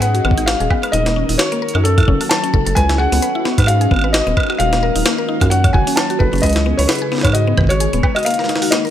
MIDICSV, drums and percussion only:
0, 0, Header, 1, 2, 480
1, 0, Start_track
1, 0, Tempo, 458015
1, 979, Time_signature, 4, 2, 24, 8
1, 9330, End_track
2, 0, Start_track
2, 0, Title_t, "Drums"
2, 19, Note_on_c, 9, 42, 71
2, 124, Note_off_c, 9, 42, 0
2, 153, Note_on_c, 9, 42, 41
2, 258, Note_off_c, 9, 42, 0
2, 259, Note_on_c, 9, 76, 82
2, 326, Note_on_c, 9, 36, 116
2, 364, Note_off_c, 9, 76, 0
2, 393, Note_on_c, 9, 42, 53
2, 393, Note_on_c, 9, 76, 37
2, 431, Note_off_c, 9, 36, 0
2, 498, Note_off_c, 9, 42, 0
2, 498, Note_off_c, 9, 76, 0
2, 499, Note_on_c, 9, 38, 127
2, 499, Note_on_c, 9, 42, 66
2, 604, Note_off_c, 9, 38, 0
2, 604, Note_off_c, 9, 42, 0
2, 633, Note_on_c, 9, 42, 38
2, 738, Note_off_c, 9, 42, 0
2, 739, Note_on_c, 9, 36, 121
2, 739, Note_on_c, 9, 76, 85
2, 843, Note_off_c, 9, 36, 0
2, 844, Note_off_c, 9, 76, 0
2, 873, Note_on_c, 9, 42, 52
2, 873, Note_on_c, 9, 76, 80
2, 978, Note_off_c, 9, 42, 0
2, 978, Note_off_c, 9, 76, 0
2, 979, Note_on_c, 9, 42, 67
2, 1083, Note_off_c, 9, 42, 0
2, 1113, Note_on_c, 9, 38, 64
2, 1113, Note_on_c, 9, 42, 39
2, 1218, Note_off_c, 9, 38, 0
2, 1218, Note_off_c, 9, 42, 0
2, 1353, Note_on_c, 9, 46, 78
2, 1458, Note_off_c, 9, 46, 0
2, 1458, Note_on_c, 9, 38, 127
2, 1458, Note_on_c, 9, 42, 68
2, 1563, Note_off_c, 9, 38, 0
2, 1563, Note_off_c, 9, 42, 0
2, 1593, Note_on_c, 9, 42, 38
2, 1698, Note_off_c, 9, 42, 0
2, 1766, Note_on_c, 9, 42, 53
2, 1833, Note_on_c, 9, 76, 76
2, 1871, Note_off_c, 9, 42, 0
2, 1938, Note_off_c, 9, 76, 0
2, 1939, Note_on_c, 9, 42, 63
2, 2043, Note_off_c, 9, 42, 0
2, 2073, Note_on_c, 9, 36, 127
2, 2073, Note_on_c, 9, 42, 38
2, 2073, Note_on_c, 9, 76, 72
2, 2099, Note_off_c, 9, 76, 0
2, 2099, Note_on_c, 9, 76, 62
2, 2126, Note_off_c, 9, 76, 0
2, 2126, Note_on_c, 9, 76, 49
2, 2152, Note_off_c, 9, 76, 0
2, 2152, Note_on_c, 9, 76, 40
2, 2178, Note_off_c, 9, 36, 0
2, 2178, Note_off_c, 9, 42, 0
2, 2179, Note_on_c, 9, 36, 115
2, 2257, Note_off_c, 9, 76, 0
2, 2283, Note_off_c, 9, 36, 0
2, 2313, Note_on_c, 9, 46, 78
2, 2313, Note_on_c, 9, 76, 36
2, 2418, Note_off_c, 9, 46, 0
2, 2418, Note_off_c, 9, 76, 0
2, 2419, Note_on_c, 9, 38, 125
2, 2419, Note_on_c, 9, 42, 66
2, 2523, Note_off_c, 9, 38, 0
2, 2523, Note_off_c, 9, 42, 0
2, 2553, Note_on_c, 9, 42, 39
2, 2658, Note_off_c, 9, 42, 0
2, 2659, Note_on_c, 9, 36, 113
2, 2764, Note_off_c, 9, 36, 0
2, 2793, Note_on_c, 9, 42, 51
2, 2898, Note_off_c, 9, 42, 0
2, 2899, Note_on_c, 9, 36, 89
2, 2899, Note_on_c, 9, 42, 65
2, 3003, Note_off_c, 9, 42, 0
2, 3004, Note_off_c, 9, 36, 0
2, 3033, Note_on_c, 9, 38, 60
2, 3033, Note_on_c, 9, 42, 36
2, 3138, Note_off_c, 9, 38, 0
2, 3138, Note_off_c, 9, 42, 0
2, 3273, Note_on_c, 9, 46, 84
2, 3378, Note_off_c, 9, 46, 0
2, 3379, Note_on_c, 9, 42, 66
2, 3484, Note_off_c, 9, 42, 0
2, 3619, Note_on_c, 9, 38, 58
2, 3724, Note_off_c, 9, 38, 0
2, 3753, Note_on_c, 9, 36, 83
2, 3753, Note_on_c, 9, 42, 53
2, 3753, Note_on_c, 9, 76, 35
2, 3774, Note_off_c, 9, 76, 0
2, 3774, Note_on_c, 9, 76, 45
2, 3796, Note_off_c, 9, 76, 0
2, 3796, Note_on_c, 9, 76, 49
2, 3817, Note_off_c, 9, 76, 0
2, 3817, Note_on_c, 9, 76, 59
2, 3838, Note_off_c, 9, 76, 0
2, 3838, Note_on_c, 9, 76, 64
2, 3858, Note_off_c, 9, 36, 0
2, 3858, Note_off_c, 9, 42, 0
2, 3859, Note_on_c, 9, 42, 68
2, 3942, Note_off_c, 9, 76, 0
2, 3964, Note_off_c, 9, 42, 0
2, 3994, Note_on_c, 9, 42, 36
2, 4099, Note_off_c, 9, 42, 0
2, 4099, Note_on_c, 9, 36, 112
2, 4099, Note_on_c, 9, 76, 34
2, 4127, Note_off_c, 9, 76, 0
2, 4127, Note_on_c, 9, 76, 43
2, 4153, Note_off_c, 9, 76, 0
2, 4153, Note_on_c, 9, 76, 51
2, 4181, Note_off_c, 9, 76, 0
2, 4181, Note_on_c, 9, 76, 59
2, 4204, Note_off_c, 9, 36, 0
2, 4207, Note_off_c, 9, 76, 0
2, 4207, Note_on_c, 9, 76, 65
2, 4312, Note_off_c, 9, 76, 0
2, 4340, Note_on_c, 9, 38, 125
2, 4340, Note_on_c, 9, 42, 67
2, 4444, Note_off_c, 9, 38, 0
2, 4444, Note_off_c, 9, 42, 0
2, 4474, Note_on_c, 9, 42, 35
2, 4579, Note_off_c, 9, 42, 0
2, 4579, Note_on_c, 9, 36, 110
2, 4580, Note_on_c, 9, 76, 76
2, 4613, Note_off_c, 9, 76, 0
2, 4613, Note_on_c, 9, 76, 66
2, 4646, Note_off_c, 9, 76, 0
2, 4646, Note_on_c, 9, 76, 52
2, 4680, Note_off_c, 9, 76, 0
2, 4680, Note_on_c, 9, 76, 42
2, 4684, Note_off_c, 9, 36, 0
2, 4714, Note_off_c, 9, 76, 0
2, 4714, Note_on_c, 9, 76, 79
2, 4793, Note_off_c, 9, 76, 0
2, 4793, Note_on_c, 9, 76, 18
2, 4819, Note_on_c, 9, 42, 63
2, 4898, Note_off_c, 9, 76, 0
2, 4924, Note_off_c, 9, 42, 0
2, 4954, Note_on_c, 9, 38, 60
2, 4954, Note_on_c, 9, 42, 34
2, 5058, Note_off_c, 9, 38, 0
2, 5058, Note_off_c, 9, 42, 0
2, 5193, Note_on_c, 9, 46, 83
2, 5298, Note_off_c, 9, 46, 0
2, 5299, Note_on_c, 9, 38, 123
2, 5299, Note_on_c, 9, 42, 65
2, 5404, Note_off_c, 9, 38, 0
2, 5404, Note_off_c, 9, 42, 0
2, 5673, Note_on_c, 9, 36, 84
2, 5673, Note_on_c, 9, 42, 52
2, 5673, Note_on_c, 9, 76, 79
2, 5778, Note_off_c, 9, 36, 0
2, 5778, Note_off_c, 9, 42, 0
2, 5778, Note_off_c, 9, 76, 0
2, 5779, Note_on_c, 9, 42, 65
2, 5884, Note_off_c, 9, 42, 0
2, 5913, Note_on_c, 9, 36, 121
2, 5913, Note_on_c, 9, 42, 36
2, 5913, Note_on_c, 9, 76, 81
2, 6018, Note_off_c, 9, 36, 0
2, 6018, Note_off_c, 9, 42, 0
2, 6018, Note_off_c, 9, 76, 0
2, 6019, Note_on_c, 9, 36, 105
2, 6124, Note_off_c, 9, 36, 0
2, 6153, Note_on_c, 9, 46, 82
2, 6258, Note_off_c, 9, 46, 0
2, 6259, Note_on_c, 9, 38, 122
2, 6259, Note_on_c, 9, 42, 68
2, 6259, Note_on_c, 9, 76, 40
2, 6363, Note_off_c, 9, 38, 0
2, 6363, Note_off_c, 9, 42, 0
2, 6363, Note_off_c, 9, 76, 0
2, 6393, Note_on_c, 9, 42, 36
2, 6498, Note_off_c, 9, 42, 0
2, 6499, Note_on_c, 9, 36, 106
2, 6604, Note_off_c, 9, 36, 0
2, 6633, Note_on_c, 9, 42, 23
2, 6660, Note_off_c, 9, 42, 0
2, 6660, Note_on_c, 9, 42, 25
2, 6686, Note_off_c, 9, 42, 0
2, 6686, Note_on_c, 9, 42, 31
2, 6713, Note_off_c, 9, 42, 0
2, 6713, Note_on_c, 9, 42, 32
2, 6739, Note_off_c, 9, 42, 0
2, 6739, Note_on_c, 9, 36, 81
2, 6739, Note_on_c, 9, 42, 64
2, 6772, Note_off_c, 9, 42, 0
2, 6772, Note_on_c, 9, 42, 38
2, 6806, Note_off_c, 9, 42, 0
2, 6806, Note_on_c, 9, 42, 43
2, 6840, Note_off_c, 9, 42, 0
2, 6840, Note_on_c, 9, 42, 45
2, 6844, Note_off_c, 9, 36, 0
2, 6873, Note_off_c, 9, 42, 0
2, 6873, Note_on_c, 9, 38, 58
2, 6873, Note_on_c, 9, 42, 37
2, 6978, Note_off_c, 9, 38, 0
2, 6978, Note_off_c, 9, 42, 0
2, 7113, Note_on_c, 9, 46, 88
2, 7218, Note_off_c, 9, 46, 0
2, 7219, Note_on_c, 9, 38, 121
2, 7219, Note_on_c, 9, 42, 65
2, 7252, Note_off_c, 9, 42, 0
2, 7252, Note_on_c, 9, 42, 50
2, 7286, Note_off_c, 9, 42, 0
2, 7286, Note_on_c, 9, 42, 44
2, 7320, Note_off_c, 9, 42, 0
2, 7320, Note_on_c, 9, 42, 34
2, 7324, Note_off_c, 9, 38, 0
2, 7425, Note_off_c, 9, 42, 0
2, 7459, Note_on_c, 9, 38, 26
2, 7493, Note_off_c, 9, 38, 0
2, 7493, Note_on_c, 9, 38, 34
2, 7526, Note_off_c, 9, 38, 0
2, 7526, Note_on_c, 9, 38, 41
2, 7560, Note_off_c, 9, 38, 0
2, 7560, Note_on_c, 9, 38, 49
2, 7593, Note_on_c, 9, 36, 82
2, 7593, Note_on_c, 9, 42, 54
2, 7593, Note_on_c, 9, 76, 78
2, 7620, Note_off_c, 9, 76, 0
2, 7620, Note_on_c, 9, 76, 66
2, 7646, Note_off_c, 9, 76, 0
2, 7646, Note_on_c, 9, 76, 51
2, 7665, Note_off_c, 9, 38, 0
2, 7672, Note_off_c, 9, 76, 0
2, 7672, Note_on_c, 9, 76, 46
2, 7698, Note_off_c, 9, 36, 0
2, 7698, Note_off_c, 9, 42, 0
2, 7699, Note_on_c, 9, 42, 69
2, 7777, Note_off_c, 9, 76, 0
2, 7804, Note_off_c, 9, 42, 0
2, 7938, Note_on_c, 9, 76, 84
2, 7939, Note_on_c, 9, 36, 98
2, 7973, Note_off_c, 9, 36, 0
2, 7973, Note_on_c, 9, 36, 83
2, 8006, Note_off_c, 9, 36, 0
2, 8006, Note_on_c, 9, 36, 65
2, 8040, Note_off_c, 9, 36, 0
2, 8040, Note_on_c, 9, 36, 56
2, 8043, Note_off_c, 9, 76, 0
2, 8073, Note_on_c, 9, 42, 53
2, 8073, Note_on_c, 9, 76, 39
2, 8144, Note_off_c, 9, 36, 0
2, 8178, Note_off_c, 9, 42, 0
2, 8178, Note_off_c, 9, 76, 0
2, 8178, Note_on_c, 9, 42, 69
2, 8283, Note_off_c, 9, 42, 0
2, 8313, Note_on_c, 9, 42, 37
2, 8418, Note_off_c, 9, 42, 0
2, 8419, Note_on_c, 9, 36, 105
2, 8419, Note_on_c, 9, 76, 85
2, 8524, Note_off_c, 9, 36, 0
2, 8524, Note_off_c, 9, 76, 0
2, 8553, Note_on_c, 9, 42, 23
2, 8553, Note_on_c, 9, 76, 82
2, 8579, Note_off_c, 9, 42, 0
2, 8579, Note_on_c, 9, 42, 28
2, 8624, Note_off_c, 9, 42, 0
2, 8624, Note_on_c, 9, 42, 34
2, 8658, Note_off_c, 9, 76, 0
2, 8659, Note_off_c, 9, 42, 0
2, 8659, Note_on_c, 9, 42, 71
2, 8703, Note_off_c, 9, 42, 0
2, 8703, Note_on_c, 9, 42, 40
2, 8738, Note_off_c, 9, 42, 0
2, 8738, Note_on_c, 9, 42, 43
2, 8793, Note_on_c, 9, 38, 27
2, 8843, Note_off_c, 9, 42, 0
2, 8846, Note_off_c, 9, 38, 0
2, 8846, Note_on_c, 9, 38, 35
2, 8899, Note_off_c, 9, 38, 0
2, 8899, Note_on_c, 9, 38, 43
2, 8899, Note_on_c, 9, 42, 39
2, 8966, Note_off_c, 9, 38, 0
2, 8966, Note_on_c, 9, 38, 52
2, 9003, Note_off_c, 9, 42, 0
2, 9033, Note_on_c, 9, 46, 82
2, 9071, Note_off_c, 9, 38, 0
2, 9138, Note_off_c, 9, 46, 0
2, 9138, Note_on_c, 9, 38, 123
2, 9138, Note_on_c, 9, 42, 72
2, 9243, Note_off_c, 9, 38, 0
2, 9243, Note_off_c, 9, 42, 0
2, 9273, Note_on_c, 9, 42, 18
2, 9294, Note_off_c, 9, 42, 0
2, 9294, Note_on_c, 9, 42, 22
2, 9330, Note_off_c, 9, 42, 0
2, 9330, End_track
0, 0, End_of_file